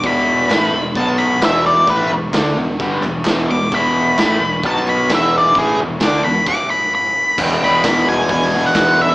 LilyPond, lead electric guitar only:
\new Staff \with { instrumentName = "Lead electric guitar" } { \time 4/4 \key e \major \tempo 4 = 131 b''2 a''8 b''8 e''8 d''8 | b'8 r2. d'''8 | b''2 a''8 b''8 e''8 d''8 | gis'8 r8 d'''8 b''8 d'''8 b''8 b''4 |
r8 b''4 gis''8 gis''8. fis''8. e''8 | }